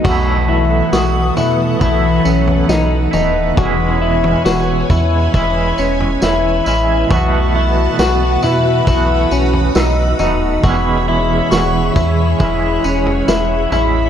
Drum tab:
CC |x---------------|----------------|----------------|----------------|
TB |x---x-x-x-x-x-x-|x---x-x-x-x-x-x-|x---x-x-x-x-x-x-|x---x-x-x-x-x-x-|
SD |----o-------o---|----o-------o---|----o-------o---|----o-------o---|
FT |o-----o-o--o--o-|o--o--o-o--o----|o-----o-o--o--o-|o-----o-o--o--o-|
BD |o-------o-------|o-----o-o-------|o-------o-------|o-----o-o-------|